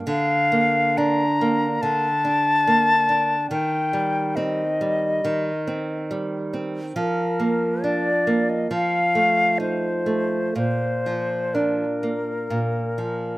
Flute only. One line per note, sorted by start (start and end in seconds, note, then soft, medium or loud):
0.08 0.99 F5 medium
0.97 1.83 A#5 medium
1.82 3.51 A5 medium
3.51 4.37 G5 medium
4.36 6.10 D#5 medium
6.96 7.85 A#4 soft
7.83 8.51 D5 soft
8.49 8.71 D#5 soft
8.73 9.58 F5 soft
9.61 10.55 C5 soft
10.57 11.56 C5 soft
11.54 13.38 A#4 soft